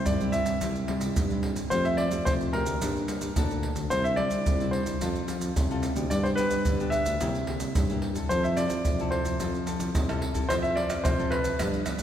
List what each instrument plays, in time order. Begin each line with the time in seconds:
Already playing: nylon-string guitar G3 C4 E4
0.06 tuba C2, nylon-string guitar G2, grand piano D5, pandeiro, maracas, surdo
0.21 nylon-string guitar G3 C4 E4, pandeiro, maracas
0.32 grand piano E5, pandeiro, maracas
0.46 tuba C2, pandeiro, maracas, surdo
0.61 tuba C2, nylon-string guitar C3 G3 C4 E4, pandeiro, maracas, surdo
0.75 pandeiro, maracas
0.88 nylon-string guitar G3 C4 E4, pandeiro, surdo
1.01 tuba C2, pandeiro, maracas, surdo
1.16 tuba G2, nylon-string guitar G2, pandeiro, maracas, surdo
1.30 nylon-string guitar G3 C4 E4, pandeiro, maracas
1.43 pandeiro
1.56 pandeiro, maracas, surdo
1.70 tuba F2, nylon-string guitar F3 A3 C4 G4, grand piano C5, pandeiro, maracas, surdo
1.85 grand piano E5, pandeiro, maracas
1.97 grand piano D5, pandeiro
2.11 tuba F2, nylon-string guitar A3 C4 G4, pandeiro, maracas, surdo
2.25 tuba F2, nylon-string guitar C3, grand piano C5, pandeiro, maracas, surdo
2.41 pandeiro, maracas
2.53 nylon-string guitar A3 C4 G4, grand piano A#4, pandeiro
2.66 tuba D2, pandeiro, maracas, surdo
2.81 tuba G2, nylon-string guitar G3 A#3 D4, pandeiro, maracas, surdo
2.96 pandeiro, maracas
3.08 pandeiro, maracas
3.21 tuba G2, pandeiro, maracas, surdo
3.36 tuba D2, nylon-string guitar D3 A#3 D4 A4, pandeiro, maracas, surdo
3.51 pandeiro, maracas
3.63 pandeiro
3.76 tuba D2, pandeiro, maracas, surdo
3.90 tuba C2, nylon-string guitar C3 G3 D4 E4, grand piano C5, pandeiro, maracas, surdo
4.04 grand piano E5, pandeiro, maracas
4.16 nylon-string guitar G3 D4 E4, grand piano D5, pandeiro
4.31 tuba C2, pandeiro, maracas, surdo
4.46 tuba C2, nylon-string guitar G3, pandeiro, maracas, surdo
4.60 nylon-string guitar G3 D4 E4, pandeiro, maracas
4.71 grand piano C5, pandeiro
4.86 tuba C2, pandeiro, maracas, surdo
5.01 tuba F2, nylon-string guitar F3 C4 F4 A4, pandeiro, maracas, surdo
5.16 pandeiro, maracas
5.27 nylon-string guitar C4 F4 A4, pandeiro, maracas, surdo
5.40 tuba F2, pandeiro, maracas, surdo
5.56 tuba C2, nylon-string guitar C3, pandeiro, maracas, surdo
5.70 nylon-string guitar C4 F4 A4, pandeiro, maracas
5.83 pandeiro, maracas
5.96 tuba D2, nylon-string guitar B3 D4 G4, pandeiro, maracas, surdo
6.10 tuba G2, nylon-string guitar G3, grand piano D5, pandeiro, maracas, surdo
6.23 grand piano C5, pandeiro, maracas
6.36 nylon-string guitar B3 D4 G4, grand piano B4, pandeiro, maracas
6.50 tuba G2, pandeiro, maracas, surdo
6.65 tuba G2, nylon-string guitar D3, pandeiro, maracas, surdo
6.79 nylon-string guitar B3 D4 G4, pandeiro, maracas
6.90 grand piano E5, pandeiro, maracas
7.06 tuba D2, pandeiro, maracas, surdo
7.21 tuba C2, nylon-string guitar C3 A#3 E4 G4, pandeiro, maracas, surdo
7.35 pandeiro, maracas
7.47 nylon-string guitar A#3 E4 G4, pandeiro, surdo
7.60 tuba C2, pandeiro, maracas, surdo
7.75 nylon-string guitar G2, tuba G2, pandeiro, maracas, surdo
7.90 nylon-string guitar A#3 E4 G4, pandeiro, maracas
8.02 pandeiro
8.15 nylon-string guitar C4 E4 A4, pandeiro, maracas, surdo
8.29 tuba F2, nylon-string guitar F3, grand piano C5, pandeiro, maracas, surdo
8.44 grand piano E5, pandeiro, maracas
8.57 nylon-string guitar C4 E4 A4, grand piano D5, pandeiro, maracas
8.70 tuba F2, pandeiro, maracas, surdo
8.84 tuba F2, nylon-string guitar C3, pandeiro, maracas, surdo
8.99 nylon-string guitar C4 E4 A4, pandeiro, maracas
9.11 grand piano C5, pandeiro
9.25 tuba F2, pandeiro, maracas, surdo
9.40 tuba F2, nylon-string guitar F3 C4 E4 A4, pandeiro, maracas, surdo
9.55 pandeiro, maracas
9.66 nylon-string guitar C4 E4 A4, pandeiro, maracas, surdo
9.80 tuba F2, pandeiro, maracas, surdo
9.94 tuba C2, nylon-string guitar C3, pandeiro, maracas, surdo
10.08 nylon-string guitar C4 E4 A4, pandeiro, tamborim, maracas
10.22 pandeiro
10.34 tuba C2, nylon-string guitar C4 E4 A4, pandeiro, maracas, surdo
10.49 tuba F2, nylon-string guitar F3, grand piano C5, pandeiro, tamborim, maracas, surdo
10.62 grand piano E5, pandeiro, maracas
10.76 nylon-string guitar C4 E4 A4, grand piano D5, pandeiro
10.90 tuba F2, pandeiro, tamborim, maracas, surdo
11.04 tuba F2, nylon-string guitar C3, grand piano C5, pandeiro, tamborim, maracas, surdo
11.19 nylon-string guitar C4 E4 A4, pandeiro, maracas
11.30 grand piano B4, pandeiro, tamborim
11.44 tuba F2, pandeiro, maracas, surdo
11.59 nylon-string guitar G2 F3 B3 D4, tuba G2, pandeiro, tamborim, maracas, surdo
11.73 pandeiro, maracas
11.86 nylon-string guitar F3 B3 D4, pandeiro, tamborim, maracas, surdo
11.99 tuba G2, pandeiro, maracas, surdo